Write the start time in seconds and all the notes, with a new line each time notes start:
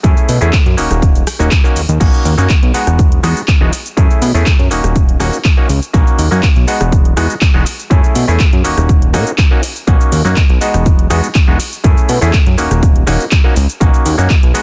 0.03 F#2 A3 C#4 E4 G#4, kick, closed hi-hat, shaker
0.17 shaker
0.29 B2, open hi-hat, shaker
0.41 E2 A3 C#4 E4 G#4, closed hi-hat, shaker
0.53 kick, clap, closed hi-hat, shaker
0.66 F#2, closed hi-hat
0.77 D#1 A#3 C#4 D#4 F#4, open hi-hat, shaker
0.91 D#1, cross-stick, closed hi-hat, shaker
1.02 kick, closed hi-hat, shaker
1.15 closed hi-hat, shaker
1.27 cross-stick, open hi-hat, shaker
1.39 D#1 A#3 C#4 D#4 F#4, shaker
1.51 kick, clap, closed hi-hat, shaker
1.64 A#3 C#4 D#4 F#4, shaker
1.76 D#2, open hi-hat, shaker
1.89 D#2, closed hi-hat, shaker
2.00 B1 A#3 C#4 D#4 F#4, kick, closed hi-hat, crash, shaker
2.14 shaker
2.25 D#2, open hi-hat, shaker
2.38 F#2 A#3 C#4 D#4 F#4, shaker
2.49 kick, clap, closed hi-hat, shaker
2.63 B1, closed hi-hat
2.74 G#3 B3 D#4 F#4, open hi-hat, shaker
2.87 E1, cross-stick, closed hi-hat, shaker
2.99 kick, closed hi-hat, shaker
3.12 closed hi-hat
3.23 E2 G#3 B3 D#4 F#4, cross-stick, open hi-hat, shaker
3.37 shaker
3.48 kick, clap, closed hi-hat, shaker
3.60 E1 G#3 B3 D#4 F#4
3.73 open hi-hat, shaker
3.86 shaker
3.97 F#2 A3 C#4 E4 G#4, kick, closed hi-hat, shaker
4.10 shaker
4.22 B2, open hi-hat, shaker
4.34 E2 A3 C#4 E4 G#4, shaker
4.46 kick, clap, closed hi-hat, shaker
4.59 F#2, closed hi-hat
4.71 D#1 A#3 C#4 D#4 F#4, open hi-hat, shaker
4.84 D#1, cross-stick, closed hi-hat, shaker
4.96 kick, closed hi-hat, shaker
5.09 closed hi-hat
5.20 D#1 A#3 C#4 D#4 F#4, cross-stick, open hi-hat, shaker
5.33 shaker
5.45 kick, clap, closed hi-hat, shaker
5.57 A#3 C#4 D#4 F#4
5.69 C#2, open hi-hat, shaker
5.82 shaker
5.93 B1 A#3 C#4 D#4 F#4, kick, closed hi-hat, shaker
6.07 shaker
6.19 D#2, open hi-hat, shaker
6.31 F#2 A#3 C#4 D#4 F#4, shaker
6.43 kick, clap, closed hi-hat, shaker
6.56 B1, closed hi-hat
6.67 G#3 B3 D#4 F#4, open hi-hat, shaker
6.81 E1, cross-stick, closed hi-hat, shaker
6.92 kick, closed hi-hat, shaker
7.05 closed hi-hat
7.17 E2 G#3 B3 D#4 F#4, cross-stick, open hi-hat, shaker
7.30 shaker
7.41 kick, clap, closed hi-hat, shaker
7.54 E1 G#3 B3 D#4 F#4
7.66 open hi-hat, shaker
7.79 shaker
7.90 F#2 A3 C#4 E4 G#4, kick, closed hi-hat, shaker
8.04 shaker
8.15 B2, open hi-hat, shaker
8.27 E2 A3 C#4 E4 G#4, shaker
8.40 kick, clap, closed hi-hat, shaker
8.53 F#2, closed hi-hat
8.64 D#1 A#3 C#4 D#4 F#4, open hi-hat, shaker
8.78 D#1, cross-stick, closed hi-hat, shaker
8.89 kick, closed hi-hat, shaker
9.02 closed hi-hat
9.13 A#2 A#3 C#4 D#4 F#4, cross-stick, open hi-hat, shaker
9.27 shaker
9.38 kick, clap, closed hi-hat, shaker
9.51 A#3 C#4 D#4 F#4
9.63 open hi-hat, shaker
9.76 shaker
9.87 B1 A#3 C#4 D#4 F#4, kick, closed hi-hat, shaker
10.01 shaker
10.12 D#2, open hi-hat, shaker
10.25 F#2 A#3 C#4 D#4 F#4, shaker
10.36 kick, clap, closed hi-hat, shaker
10.50 B1, closed hi-hat
10.61 G#3 B3 D#4 F#4, open hi-hat, shaker
10.74 E1, cross-stick, closed hi-hat, shaker
10.86 kick, closed hi-hat, shaker
10.99 closed hi-hat
11.10 E2 G#3 B3 D#4 F#4, cross-stick, open hi-hat, shaker
11.24 shaker
11.35 kick, clap, closed hi-hat, shaker
11.47 E1 G#3 B3 D#4 F#4
11.60 open hi-hat, shaker
11.73 shaker
11.84 F#2 A3 C#4 E4 G#4, kick, closed hi-hat, shaker
11.97 shaker
12.09 B2, open hi-hat, shaker
12.21 E2 A3 C#4 E4 G#4, shaker
12.33 kick, clap, closed hi-hat, shaker
12.47 F#2, closed hi-hat
12.58 D#1 A#3 C#4 D#4 F#4, open hi-hat, shaker
12.71 D#1, cross-stick, closed hi-hat, shaker
12.83 kick, closed hi-hat, shaker
12.96 closed hi-hat
13.07 D#1 A#3 C#4 D#4 F#4, cross-stick, open hi-hat, shaker
13.20 shaker
13.31 kick, clap, closed hi-hat, shaker
13.44 A#3 C#4 D#4 F#4
13.56 C#2, open hi-hat, shaker
13.69 shaker
13.80 B1 A#3 C#4 D#4 F#4, kick, closed hi-hat, shaker
13.94 shaker
14.06 D#2, open hi-hat, shaker
14.18 F#2 A#3 C#4 D#4 F#4, shaker
14.30 kick, clap, closed hi-hat, shaker
14.43 B1, closed hi-hat
14.54 G#3 B3 D#4 F#4, open hi-hat, shaker